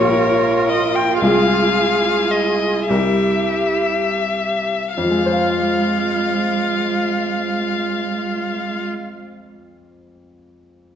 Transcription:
Already playing: A#1 A#3 F4 G4 A#4 C#5
0.69 D#5
0.95 G5
1.20 C2 G#3 F4 G#4 F5
2.31 D#5
2.89 C2 G3 E4 G4 A#4 E5
4.96 F2 G#3 F4 F5
5.04 F3
5.11 G#3
5.19 F4
5.26 C5
5.32 F5

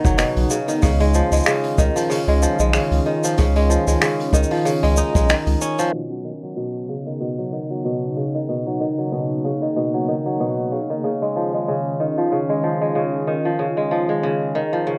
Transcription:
Already playing: C#3 D#3 B3 D#4
0.04 F#1 F#3, kick, shaker
0.18 B2, finger snap, open hi-hat, shaker
0.36 B1, open hi-hat
0.50 C#3, shaker
0.68 D#3, open hi-hat, shaker
0.82 C#2 C#3 D#3 C#4 F4, kick, open hi-hat, shaker
1.00 G#3, open hi-hat
1.14 F3, shaker
1.31 C#2 G#3, open hi-hat, shaker
1.36 shaker
1.39 shaker
1.43 C#3, finger snap, open hi-hat, shaker
1.47 shaker
1.63 open hi-hat
1.78 C#2 D#3, kick, shaker
1.96 F3, open hi-hat, shaker
2.10 C#3, open hi-hat, shaker
2.28 C#2 G#3, open hi-hat
2.42 F3, shaker
2.59 B1 G#3, shaker
2.73 C#3, finger snap, open hi-hat, shaker
2.91 C#2, open hi-hat
3.06 D#3
3.24 F3, open hi-hat, shaker
3.38 C#2 C#3, kick, open hi-hat, shaker
3.56 G#3, open hi-hat
3.70 F3, shaker
3.87 C#2 G#3, open hi-hat, shaker
4.01 C#3, finger snap, open hi-hat, shaker
4.20 open hi-hat
4.33 C#2 D#3, kick, shaker
4.43 shaker
4.51 F3, open hi-hat
4.52 open hi-hat
4.54 open hi-hat
4.56 open hi-hat
4.59 open hi-hat
4.61 open hi-hat
4.63 C#3, open hi-hat
4.66 open hi-hat, shaker
4.83 C#2 G#3, open hi-hat
4.97 D#4, shaker
5.15 B1 G#3, kick, open hi-hat, shaker
5.29 D#3, finger snap, open hi-hat, shaker
5.47 C#2, open hi-hat
5.61 C#4, shaker
5.78 F3, open hi-hat, shaker
5.92 B2 C#3 B3 D#4
6.11 F#3
6.24 D#3
6.43 F#3
6.56 B2
6.89 C#3
7.07 D#3
7.20 B2
7.39 F#3
7.53 D#3
7.70 F#3
7.85 B2
8.17 C#3
8.35 D#3
8.49 B2 A#3
8.67 F#3
8.81 D#3
8.98 F#3
9.12 B2
9.44 C#3
9.62 D#3
9.76 B2
9.94 F#3
10.08 D#3
10.26 F#3
10.40 B2
10.72 C#3
10.90 D#3
11.04 C#3 D#3 C#4 F4
11.22 G#3
11.36 F3
11.54 G#3
11.68 C#3
12.00 D#3
12.18 F3
12.32 C#3
12.49 G#3
12.63 F3
12.81 G#3
12.95 C#3
13.27 D#3
13.45 F3
13.59 C#3
13.77 G#3
13.91 F3
14.09 G#3
14.23 C#3
14.55 D#3
14.73 F3
14.87 C#3

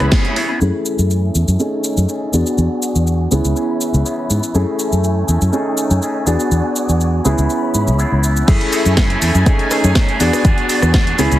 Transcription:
Already playing: E3 B3 C#4 E4 G#4 C#5 B5
0.00 C#2, cross-stick, closed hi-hat, tambourine
0.11 E3 B3 C#4 G#4, kick, snare, open hi-hat, tambourine
0.25 closed hi-hat
0.36 E3 B3 C#4 G#4, open hi-hat, tambourine
0.49 B3 C#4 G#4, tambourine
0.60 F#2 E3 A3 C#4 E4 G#4 G#5, cabasa
0.86 cabasa
0.99 F#2, cabasa
1.10 cabasa
1.35 E2, cabasa
1.48 F#2, cabasa
1.59 D#3 A3 C#4 D#4 G#4 C#5, cabasa
1.84 cabasa
1.97 F#2, cabasa
2.08 D#3 A3 C#4 G#4, cabasa
2.32 E2 F#3 B3 D4 F#4 G#4 D5, cabasa
2.46 cabasa
2.58 E2, cabasa
2.82 cabasa
2.95 E2, cabasa
3.07 cabasa
3.31 C#2 B3 C#4 E4 G#4 C#5 B5, cabasa
3.45 C#2, cabasa
3.56 E3 B3 C#4 G#4, cabasa
3.81 cabasa
3.94 C#2, cabasa
4.05 E3 B3 C#4 G#4, cabasa
4.30 G#2, cabasa
4.43 cabasa
4.54 F#2 E3 A3 C#4 E4 G#4 G#5, cabasa
4.79 cabasa
4.92 F#2, cabasa
5.04 cabasa
5.28 E2 A3 C#4 G#4, cabasa
5.41 F#2, cabasa
5.52 D#3 A3 C#4 D#4 G#4 C#5, cabasa
5.78 cabasa
5.90 F#2, cabasa
6.02 D#3 A3 C#4 G#4, cabasa
6.26 E2 F#3 B3 D4 F#4 G#4 D5, cabasa
6.40 cabasa
6.51 E2, cabasa
6.76 cabasa
6.89 E2, cabasa
7.01 cabasa
7.24 C#2 E3 B3 C#4 E4 G#4 C#5 B5, cabasa
7.38 C#2, cabasa
7.50 cabasa
7.74 G#2, cabasa
7.87 C#2, cabasa
7.98 E3 B3 E4 G#4, cabasa
8.12 C#2
8.24 cabasa
8.36 cabasa
8.47 F#2 E3 A3 C#4 E4 G#4 G#5, kick, closed hi-hat, crash, cabasa
8.61 closed hi-hat
8.72 E3 A3 C#4 G#4, open hi-hat, cabasa
8.86 F#2, closed hi-hat, cabasa
8.97 E3 A3 C#4 G#4, kick, snare, closed hi-hat, cabasa
9.10 closed hi-hat
9.21 E2 E3 A3 C#4 G#4, open hi-hat, cabasa
9.34 F#2 A3 C#4 G#4, closed hi-hat, cabasa
9.46 D#3 A3 C#4 D#4 G#4 C#5, kick, closed hi-hat, cabasa
9.59 A3 C#4 G#4, closed hi-hat
9.70 D#3 A3 C#4 G#4, cross-stick, open hi-hat, cabasa
9.84 F#2, closed hi-hat, cabasa
9.95 D#3 A3 C#4 G#4, kick, snare, closed hi-hat, cabasa
10.09 closed hi-hat
10.19 E2 F#3 B3 D4 F#4 G#4 D5, open hi-hat, cabasa
10.33 cross-stick, open hi-hat, cabasa
10.44 E2 F#3 B3 D4 G#4, kick, closed hi-hat, cabasa
10.58 closed hi-hat
10.69 F#3 B3 D4 G#4, open hi-hat, cabasa
10.82 E2, cross-stick, closed hi-hat, cabasa
10.94 F#3 D4 G#4, kick, snare, closed hi-hat, cabasa
11.07 closed hi-hat
11.18 C#2 E3 B3 C#4 E4 G#4 C#5 B5, open hi-hat, cabasa
11.31 C#2 B3 C#4 G#4, closed hi-hat, cabasa

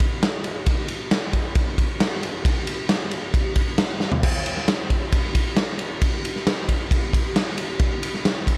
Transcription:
0.00 kick, ride
0.23 snare, ride
0.44 ride
0.66 kick, ride
0.88 ride
1.11 snare, ride
1.33 kick, ride
1.55 kick, ride
1.78 kick, ride
2.00 snare, ride
2.23 ride
2.45 kick, ride
2.67 ride
2.89 snare, ride
3.11 ride
3.34 kick, ride
3.55 kick, ride
3.78 snare, ride
4.00 snare
4.12 floor tom
4.23 kick, crash
4.46 ride
4.57 snare
4.68 snare, ride
4.90 kick, ride
5.12 kick, ride
5.35 kick, ride
5.56 snare, ride
5.79 ride
6.01 kick, ride
6.25 ride
6.36 snare
6.47 snare, ride
6.69 kick, ride
6.91 kick, ride
7.13 kick, ride
7.36 snare, ride
7.58 ride
7.79 kick, ride
8.03 ride
8.14 snare
8.25 snare, ride
8.47 kick, ride

